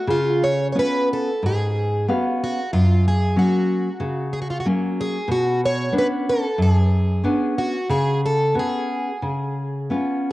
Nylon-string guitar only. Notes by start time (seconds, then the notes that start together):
0.07 C#3
0.75 B3 C#4 F4
1.43 G#2
2.08 B3 C#4 F5
2.73 F#2
3.36 F#3 A#3 C#4
4.00 C#3
4.65 F#3 A#3 C#4
5.28 B2
5.92 B3 C#4 D4
6.58 F#2
7.24 B3 C#4 D4
7.89 C#3
8.54 B3 C#4 F#4
9.22 C#3
9.90 B3 C#4 F4